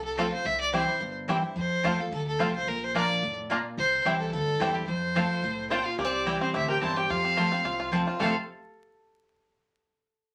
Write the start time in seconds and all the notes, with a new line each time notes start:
Already playing: C2 C3
0.05 A4
0.17 F3 A3 C4 F4 A4 C5 A5
0.31 C4 F4 C5
0.45 C2 C3 E5
0.60 D5
0.72 E3 G3 C4 E4 G4 C5 G5
0.87 C4 E4
1.00 G1 G2
1.28 E3 G3 C4 E4 G4 C5 G5
1.42 C4 E4
1.56 F2 C5
1.83 E2 F3 A3 C4 F4 C5 A5
1.99 C4 F4 A4
2.11 D2 C3 A4
2.28 A4
2.39 C2 F3 A3 C4 F4 C5 A5
2.54 C4 F4 C5
2.67 A#1 A#2 A#4
2.78 A#4
2.83 C5
2.94 F3 A#3 D4 F4 D5 A#5
3.23 F1 A2
3.50 A#2 A#3 D4 F4 D5 A#5
3.77 C2 C3 C5
4.05 C2 E3 G3 C4 E4 G4 C5 G5
4.19 A4
4.31 D2 G2 A4
4.60 E2 E3 G3 C4 E4 G4 C5 G5
4.74 C4 E4 G4
4.87 F2 C5
5.15 F3 A3 C4 F4 C5 A5
5.43 C2 A2
5.70 A#2 C4 F4 C5 G5 A5
5.85 F4 F5
5.99 C2 C3 A#3 G4 D5
6.05 C4
6.25 E3 G3 C4 E4 C5 G5
6.41 C4 C5
6.54 D2 A2 E4 G4 E5
6.68 G4 A#4 G5
6.81 E2 G2 C4 E4 C5 G5 A5
6.96 G4 G5
7.09 F2 F4 F5
7.24 C4
7.37 F3 A3 C4 F4 C5 A5
7.52 C4 F4
7.65 C2 C3 F4
7.80 F4
7.92 F3 A3 C4 F4 C5 A5
8.06 C4 F4
8.19 F1 F2 C3 F3 A3 C4 F4 A4 C5 F5 A5
8.24 F4 A4